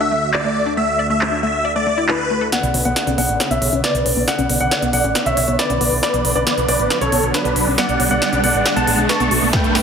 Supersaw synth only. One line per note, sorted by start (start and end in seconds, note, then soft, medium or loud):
0.00 0.30 E5 medium
0.34 0.72 D5 medium
0.77 1.06 E5 medium
1.10 1.39 E5 medium
1.43 1.72 E5 medium
1.76 2.05 D5 medium
2.09 2.48 B4 loud
2.52 2.82 D5 medium
2.52 2.82 F#5 loud
2.85 3.15 D5 medium
2.85 3.15 F#5 medium
3.18 3.47 D5 medium
3.18 3.47 F#5 medium
3.51 3.80 C#5 medium
3.51 3.80 E5 medium
3.84 4.23 B4 medium
3.84 4.23 D5 medium
4.28 4.57 D5 medium
4.28 4.57 F#5 loud
4.60 4.90 D5 medium
4.60 4.90 F#5 medium
4.93 5.23 D5 medium
4.93 5.23 F#5 medium
5.26 5.55 C#5 medium
5.26 5.55 E5 medium
5.59 5.98 B4 medium
6.03 6.32 B4 medium
6.03 6.32 D5 loud
6.36 6.65 B4 medium
6.36 6.65 D5 medium
6.68 6.98 B4 medium
6.68 6.98 D5 medium
7.01 7.31 A4 medium
7.01 7.31 C#5 medium
7.34 7.73 D4 medium
7.34 7.73 B4 loud
7.78 8.07 D5 medium
7.78 8.07 F#5 loud
8.11 8.40 D5 medium
8.11 8.40 F#5 loud
8.43 8.73 D5 medium
8.43 8.73 F#5 loud
8.76 9.06 F#5 medium
8.76 9.06 A5 medium
9.09 9.48 A5 medium
9.09 9.48 C#6 medium
9.53 9.82 B4 medium
9.53 9.82 G5 medium